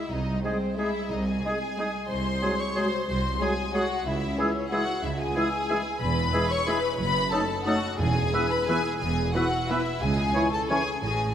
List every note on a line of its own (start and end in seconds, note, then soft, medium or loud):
0.00 0.12 E4 medium
0.00 0.11 E5 medium
0.11 0.39 C2 medium
0.11 0.44 D#4 medium
0.11 0.44 D#5 medium
0.43 0.56 G#3 soft
0.43 0.57 G#3 soft
0.43 0.53 G#3 soft
0.43 0.77 C4 medium
0.43 0.53 D#4 soft
0.43 0.56 G#4 soft
0.43 0.57 G#4 soft
0.43 0.77 C5 medium
0.43 0.50 D#6 soft
0.77 0.89 G#3 soft
0.77 0.87 G#3 soft
0.77 0.91 G#3 soft
0.77 0.87 D#4 soft
0.77 1.10 E4 medium
0.77 0.89 G#4 soft
0.77 0.90 G#4 soft
0.77 1.11 E5 medium
0.77 0.85 D#6 soft
1.10 1.39 C2 medium
1.10 1.28 D#4 medium
1.10 1.27 D#5 medium
1.27 2.09 G#4 medium
1.27 2.10 G#5 medium
1.45 1.57 G#3 soft
1.45 1.53 G#3 soft
1.45 1.57 G#3 soft
1.45 1.53 D#4 soft
1.45 1.57 G#4 soft
1.45 1.58 G#4 soft
1.45 1.52 D#6 soft
1.77 1.89 G#3 soft
1.77 1.90 G#3 soft
1.77 1.87 G#3 medium
1.77 1.87 D#4 soft
1.77 1.89 G#4 soft
1.77 1.91 G#4 soft
1.77 1.85 D#6 soft
2.09 2.36 C2 medium
2.09 2.37 C2 medium
2.09 2.59 C5 medium
2.09 2.58 C6 medium
2.42 2.54 F#3 soft
2.42 2.55 G#3 soft
2.42 2.51 G#3 soft
2.42 2.55 F#4 soft
2.42 2.51 F#4 soft
2.42 2.55 G#4 soft
2.42 2.50 D#6 soft
2.59 2.76 C#5 medium
2.59 2.77 C#6 medium
2.75 2.88 F#3 soft
2.75 2.85 G#3 soft
2.75 2.90 G#3 soft
2.75 2.85 F#4 soft
2.75 2.90 F#4 soft
2.75 2.87 G#4 soft
2.75 3.06 C5 medium
2.75 3.07 C6 medium
2.75 2.83 D#6 soft
3.07 3.35 C2 medium
3.07 3.39 C5 medium
3.07 3.40 C6 medium
3.40 3.53 F#3 soft
3.40 3.52 G#3 soft
3.40 3.49 G#3 soft
3.40 3.53 F#4 soft
3.40 3.50 F#4 soft
3.40 3.73 G#4 medium
3.40 3.53 G#4 soft
3.40 3.75 G#5 medium
3.40 3.47 D#6 soft
3.73 3.85 F#3 soft
3.73 3.82 G#3 medium
3.73 3.86 G#3 soft
3.73 4.05 F#4 medium
3.73 3.85 F#4 soft
3.73 3.82 F#4 medium
3.73 3.86 G#4 medium
3.73 4.05 F#5 medium
3.73 3.81 D#6 soft
4.05 4.32 C#2 medium
4.05 4.38 E4 medium
4.05 4.38 E5 medium
4.37 4.50 E3 soft
4.37 4.47 G#3 soft
4.37 4.52 G#3 soft
4.37 4.71 C#4 medium
4.37 4.46 E4 soft
4.37 4.51 E4 soft
4.37 4.51 G#4 soft
4.37 4.72 C#5 medium
4.37 4.45 E6 soft
4.71 4.84 E3 soft
4.71 4.83 G#3 soft
4.71 4.80 G#3 medium
4.71 4.83 E4 medium
4.71 4.80 E4 medium
4.71 5.04 F#4 medium
4.71 4.84 G#4 soft
4.71 5.03 F#5 medium
4.71 4.79 E6 soft
5.03 5.31 C#2 medium
5.03 5.10 E4 medium
5.03 5.19 E5 medium
5.19 6.00 G#4 medium
5.19 6.02 G#5 medium
5.35 5.49 E3 medium
5.35 5.44 G#3 soft
5.35 5.48 G#3 medium
5.35 5.43 E4 soft
5.35 5.48 E4 medium
5.35 5.48 G#4 medium
5.35 5.43 E6 medium
5.69 5.82 E3 medium
5.69 5.81 G#3 soft
5.69 5.77 G#3 medium
5.69 5.81 E4 medium
5.69 5.77 E4 medium
5.69 5.81 G#4 soft
5.69 5.75 E6 soft
6.01 6.28 E1 medium
6.01 6.28 E2 medium
6.01 6.50 B4 medium
6.01 6.50 B5 medium
6.33 6.46 E3 medium
6.33 6.46 G#3 soft
6.33 6.42 G#3 soft
6.33 6.42 E4 soft
6.33 6.47 E4 soft
6.33 6.46 G#4 medium
6.33 6.39 E6 medium
6.50 6.67 C#5 medium
6.50 6.67 C#6 loud
6.67 6.79 E3 medium
6.67 6.79 G#3 medium
6.67 6.75 G#3 medium
6.67 6.79 E4 medium
6.67 6.75 E4 medium
6.67 6.79 G#4 soft
6.67 6.98 B4 medium
6.67 6.97 B5 medium
6.67 6.73 E6 soft
6.98 7.27 F#1 medium
6.98 7.26 F#2 medium
6.98 7.31 B4 medium
6.98 7.31 B5 loud
7.31 7.45 F#3 medium
7.31 7.44 A3 medium
7.31 7.41 A3 medium
7.31 7.44 D#4 medium
7.31 7.41 D#4 medium
7.31 7.44 A4 medium
7.31 7.67 A4 medium
7.31 7.66 A5 medium
7.31 7.38 D#6 medium
7.65 7.79 F#3 medium
7.65 7.78 A3 soft
7.65 7.75 A3 medium
7.65 7.78 D#4 medium
7.65 7.75 D#4 medium
7.65 7.99 F#4 medium
7.65 7.79 A4 medium
7.65 7.98 F#5 medium
7.65 7.72 D#6 medium
7.99 8.27 E1 medium
7.99 8.27 E2 medium
7.99 8.47 E2 medium
7.99 8.50 G#4 medium
7.99 8.50 G#5 medium
8.33 8.41 E3 medium
8.33 8.46 E3 medium
8.33 8.46 B3 medium
8.33 8.42 B3 medium
8.33 8.46 E4 medium
8.33 8.47 B4 medium
8.33 8.39 E6 medium
8.51 8.68 B4 medium
8.51 8.68 B5 medium
8.66 8.80 E3 soft
8.66 8.77 E3 medium
8.66 8.77 B3 medium
8.66 8.81 B3 medium
8.66 8.82 E4 medium
8.66 9.00 G#4 medium
8.66 8.81 B4 medium
8.66 8.98 G#5 medium
8.66 8.75 E6 medium
8.99 9.29 E1 medium
8.99 9.28 E2 medium
8.99 9.34 G#4 medium
8.99 9.33 G#5 medium
9.33 9.47 E3 medium
9.33 9.43 E3 soft
9.33 9.43 B3 medium
9.33 9.48 B3 medium
9.33 9.48 E4 medium
9.33 9.69 F#4 medium
9.33 9.48 B4 medium
9.33 9.68 F#5 medium
9.33 9.41 E6 medium
9.68 9.82 E3 soft
9.68 9.78 E3 medium
9.68 9.82 B3 medium
9.68 9.78 B3 medium
9.68 10.01 E4 medium
9.68 9.81 E4 medium
9.68 9.82 B4 medium
9.68 10.01 E5 medium
9.68 9.76 E6 soft
10.01 10.29 C#2 medium
10.01 10.52 G#4 medium
10.01 10.52 G#5 medium
10.34 10.43 E3 medium
10.34 10.48 E3 medium
10.34 10.47 C#4 soft
10.34 10.43 C#4 medium
10.34 10.48 E4 soft
10.34 10.47 C#5 medium
10.34 10.42 C#6 medium
10.52 10.69 A4 medium
10.52 10.60 A5 medium
10.69 10.82 E3 soft
10.69 10.79 E3 medium
10.69 10.82 C#4 medium
10.69 10.79 C#4 medium
10.69 10.82 E4 medium
10.69 11.01 G#4 medium
10.69 10.82 C#5 medium
10.69 11.01 G#5 medium
10.69 10.75 C#6 soft
11.01 11.30 A1 medium
11.01 11.31 A2 medium
11.01 11.34 G#4 medium
11.01 11.34 G#5 medium